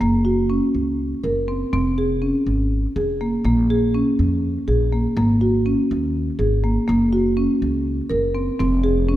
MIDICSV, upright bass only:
0, 0, Header, 1, 2, 480
1, 0, Start_track
1, 0, Tempo, 490597
1, 13, Time_signature, 7, 3, 24, 8
1, 8967, End_track
2, 0, Start_track
2, 0, Title_t, "Upright bass"
2, 0, Program_c, 0, 32
2, 9, Note_on_c, 0, 30, 87
2, 567, Note_off_c, 0, 30, 0
2, 729, Note_on_c, 0, 37, 72
2, 1102, Note_off_c, 0, 37, 0
2, 1212, Note_on_c, 0, 30, 79
2, 1584, Note_off_c, 0, 30, 0
2, 1693, Note_on_c, 0, 29, 92
2, 2249, Note_off_c, 0, 29, 0
2, 2411, Note_on_c, 0, 32, 77
2, 2783, Note_off_c, 0, 32, 0
2, 2896, Note_on_c, 0, 29, 80
2, 3266, Note_off_c, 0, 29, 0
2, 3370, Note_on_c, 0, 34, 91
2, 3928, Note_off_c, 0, 34, 0
2, 4100, Note_on_c, 0, 41, 75
2, 4468, Note_off_c, 0, 41, 0
2, 4577, Note_on_c, 0, 34, 75
2, 4946, Note_off_c, 0, 34, 0
2, 5054, Note_on_c, 0, 32, 95
2, 5610, Note_off_c, 0, 32, 0
2, 5782, Note_on_c, 0, 39, 80
2, 6149, Note_off_c, 0, 39, 0
2, 6251, Note_on_c, 0, 32, 78
2, 6622, Note_off_c, 0, 32, 0
2, 6740, Note_on_c, 0, 30, 91
2, 7293, Note_off_c, 0, 30, 0
2, 7455, Note_on_c, 0, 37, 85
2, 7824, Note_off_c, 0, 37, 0
2, 7930, Note_on_c, 0, 30, 82
2, 8301, Note_off_c, 0, 30, 0
2, 8413, Note_on_c, 0, 29, 94
2, 8967, Note_off_c, 0, 29, 0
2, 8967, End_track
0, 0, End_of_file